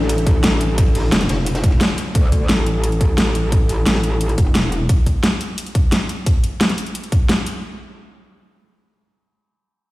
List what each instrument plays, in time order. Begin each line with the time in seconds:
Already playing: wobble bass A1, ambient pad D4 A4 E5
0.02 snare
0.09 closed hi-hat, ride
0.18 closed hi-hat
0.27 kick, closed hi-hat, ride
0.43 snare, closed hi-hat, ride
0.60 closed hi-hat, ride
0.78 kick, closed hi-hat, ride
0.86 ride
0.95 closed hi-hat, open hi-hat
1.12 wobble bass F1, snare, closed hi-hat, ride
1.21 snare, closed hi-hat
1.29 wobble bass F1, snare, closed hi-hat, ride
1.46 closed hi-hat, ride
1.55 snare, closed hi-hat, ride
1.64 kick, closed hi-hat
1.72 ride
1.80 snare, closed hi-hat, ride
1.98 closed hi-hat, ride
2.15 wobble bass D2, kick, closed hi-hat
2.32 kick, closed hi-hat
2.49 wobble bass A1, snare, closed hi-hat
2.66 closed hi-hat
2.84 closed hi-hat
2.92 closed hi-hat
3.01 kick, closed hi-hat
3.18 snare, closed hi-hat
3.35 closed hi-hat
3.52 kick, closed hi-hat
3.69 closed hi-hat
3.86 wobble bass A1, snare, closed hi-hat
3.95 snare
4.04 closed hi-hat
4.21 closed hi-hat
4.29 closed hi-hat
4.38 wobble bass F1, kick, closed hi-hat
4.55 wobble bass E1, snare, closed hi-hat
4.72 closed hi-hat
4.89 kick, closed hi-hat
5.06 kick, closed hi-hat
5.24 snare, closed hi-hat
5.41 closed hi-hat
5.58 closed hi-hat
5.66 closed hi-hat
5.75 kick, closed hi-hat
5.92 snare, closed hi-hat
6.09 closed hi-hat
6.26 kick, closed hi-hat
6.44 closed hi-hat
6.61 snare, closed hi-hat
6.69 snare, closed hi-hat
6.78 closed hi-hat
6.86 closed hi-hat
6.95 closed hi-hat
7.04 closed hi-hat
7.12 kick, closed hi-hat
7.29 snare, closed hi-hat
7.46 closed hi-hat